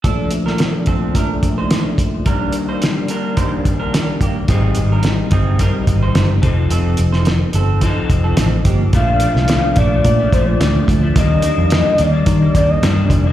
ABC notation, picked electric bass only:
X:1
M:4/4
L:1/16
Q:1/4=108
K:Bb
V:1 name="Picked electric bass" clef=bass
z16 | z16 | _A,,,2 A,,,4 G,,,3 z A,,,2 G,,,2 F,,,2 | F,,,2 F,,,4 G,,,3 z F,,,2 A,,,2 G,,,2 |
B,,,3 C,,2 z B,,,2 B,,2 B,,,2 D,,2 D,,2 | E,,3 F,,2 z E,,2 E,2 E,,2 G,,2 F,,,2 |]